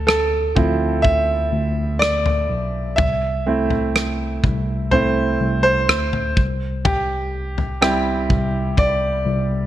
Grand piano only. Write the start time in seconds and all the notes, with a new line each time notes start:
Already playing: A4
0.07 A4
0.55 F3 C4 E4
1.02 E5
1.99 D5
2.96 E5
3.46 A3 C4 E4
4.91 A3 C4 E4 C5
5.63 C5
6.85 G4
7.81 G3 C4 E4 G4
8.79 D5